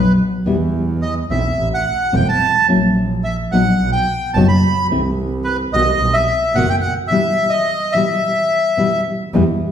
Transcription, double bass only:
0.00 0.14 B1 medium
0.47 1.26 E2 medium
1.30 1.53 B1 medium
1.58 1.81 A1 medium
2.14 2.37 E1 medium
2.69 3.48 A#1 medium
3.51 3.75 A#1 medium
3.80 4.03 B1 medium
4.35 4.58 F#1 medium
4.90 5.69 C2 medium
5.73 5.96 C2 medium
6.00 6.23 B1 medium
6.55 6.78 F#1 medium
9.34 9.57 E2 medium

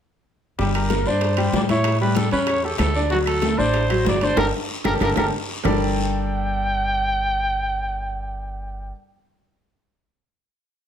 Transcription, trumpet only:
0.60 0.74 G4 medium
0.75 1.08 A#4 medium
1.07 1.54 C5 loud
1.55 1.62 D5 medium
1.70 1.99 C#5 medium
2.00 2.17 B4 medium
2.16 2.31 A4 medium
2.32 2.39 B4 medium
2.47 2.66 C#5 medium
2.64 2.78 A4 medium
2.79 3.01 A4 medium
3.11 3.18 F#4 medium
3.27 3.60 A4 medium
3.58 4.06 C5 loud
4.08 4.25 D5 medium
4.23 4.38 C5 medium
4.39 4.46 A#4 loud
4.86 4.93 A#4 medium
5.03 5.10 A#4 medium
5.18 5.25 A#4 medium
5.66 8.91 G5 loud

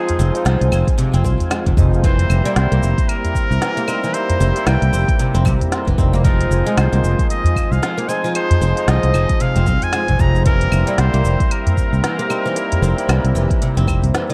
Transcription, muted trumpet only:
0.00 0.46 G#4 medium
2.04 2.53 C5 medium
2.57 3.10 C5 loud
3.09 4.15 A#4 loud
4.14 4.68 C5 loud
4.66 5.46 G5 loud
6.25 6.79 A#4 medium
6.78 7.29 C5 medium
7.30 7.73 D#5 loud
7.72 8.10 F5 loud
8.09 8.35 G#5 medium
8.35 8.90 C5 loud
8.89 9.43 D#5 loud
9.41 9.85 F5 loud
9.83 10.22 G#5 loud
10.20 10.45 A#5 loud
10.46 11.01 A#4 loud
10.99 11.53 C5 loud
11.52 14.14 A#4 loud

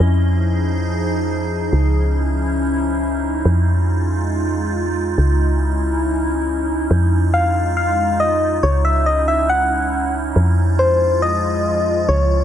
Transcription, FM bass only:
0.00 1.71 F2 medium
1.73 3.43 C#2 medium
3.45 5.16 F2 medium
5.18 6.89 C#2 medium
6.91 8.61 F2 medium
8.63 10.34 C#2 medium
10.36 12.07 F2 medium
12.09 12.44 C#2 medium

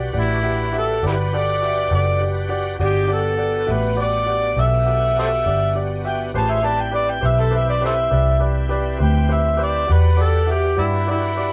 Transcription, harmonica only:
0.18 0.74 E4 medium
0.78 1.04 A4 medium
1.07 1.15 E4 soft
1.07 1.14 G4 soft
1.07 1.37 B4 medium
1.36 1.91 D5 medium
1.95 2.22 D5 medium
2.85 3.11 G4 medium
3.13 3.73 A4 medium
3.71 4.02 B4 medium
4.01 4.62 D5 medium
4.61 5.17 E5 medium
5.19 5.28 A4 medium
5.19 5.26 C5 medium
5.19 5.76 E5 medium
6.08 6.20 G5 medium
6.38 6.53 A5 medium
6.51 6.66 E5 medium
6.65 6.82 A5 medium
6.80 6.94 G5 medium
6.95 7.12 D5 medium
7.10 7.28 G5 medium
7.26 7.43 E5 medium
7.41 7.58 A4 medium
7.57 7.69 E5 medium
7.70 7.83 D5 medium
7.85 7.92 A4 medium
7.85 7.94 C5 medium
7.85 8.41 E5 medium
9.03 9.35 G5 medium
9.33 9.64 E5 medium
9.63 9.93 D5 medium
9.92 10.23 B4 medium
10.22 10.49 A4 medium
10.51 10.82 G4 medium
10.80 11.08 E4 medium
11.10 11.53 E4 medium

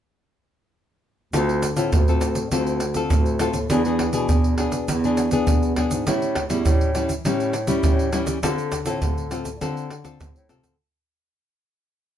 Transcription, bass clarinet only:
1.33 1.71 D2 loud
1.76 1.90 A2 medium
1.93 2.43 D2 medium
2.51 3.02 D2 medium
3.11 3.49 D2 medium
3.54 3.67 D#2 medium
3.70 4.08 E2 loud
4.13 4.26 B2 medium
4.29 4.80 E2 medium
4.88 5.39 E2 medium
5.47 5.85 E2 medium
5.90 6.04 G#2 medium
6.07 6.44 A2 medium
6.50 6.63 E2 medium
6.66 7.16 A2 medium
7.26 7.75 A2 medium
7.84 8.22 A2 medium
8.43 8.80 D3 loud
8.86 8.99 A2 medium
9.02 9.52 D3 medium
9.61 10.11 D3 loud
10.20 10.33 D3 medium
10.36 10.49 A2 medium
10.50 10.63 C3 medium
10.64 10.77 D3 medium

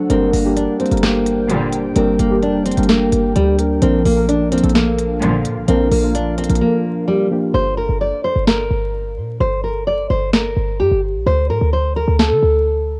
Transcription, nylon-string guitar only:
0.10 0.29 C4 loud
0.33 0.53 A#3 medium
0.56 0.76 D4 medium
0.80 0.99 C4 medium
1.03 1.92 A#3 medium
1.96 2.15 C4 loud
2.19 2.39 A#3 medium
2.43 2.62 D4 medium
2.66 2.85 C4 medium
2.89 3.33 A#3 medium
3.36 3.55 G3 medium
3.82 4.02 C4 loud
4.05 4.25 A#3 medium
4.29 4.48 D4 medium
4.52 4.71 C4 medium
4.75 5.64 A#3 medium
5.68 5.87 C4 loud
5.91 6.11 A#3 medium
6.15 6.34 D4 medium
6.38 6.57 C4 medium
6.61 7.05 A#3 medium
7.08 7.27 G3 medium
7.54 7.74 C5 loud
7.77 7.97 A#4 medium
8.01 8.20 D5 medium
8.24 8.43 C5 medium
8.47 9.36 A#4 medium
9.40 9.60 C5 loud
9.64 9.83 A#4 medium
9.87 10.06 D5 medium
10.10 10.29 C5 medium
10.33 10.77 A#4 medium
10.80 10.99 G4 medium
11.26 11.46 C5 loud
11.50 11.69 A#4 medium
11.73 11.92 C5 medium
11.96 12.15 A#4 medium
12.19 13.00 A4 medium

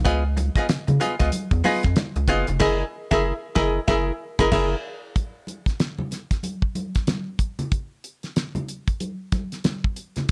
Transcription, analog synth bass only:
0.06 0.50 C#2 loud
0.69 0.77 C#3 medium
0.88 0.99 C#3 medium
1.20 1.31 C#2 medium
1.51 1.63 E2 loud
1.85 1.95 F2 medium
2.16 2.27 C#2 medium
2.28 2.45 F#1 medium
2.48 2.59 F1 loud
2.60 2.83 F#1 loud
3.12 3.32 F#1 loud
3.56 3.79 F#1 loud
3.88 4.11 F#1 loud
4.39 4.50 F#1 medium
4.52 4.75 F#1 loud

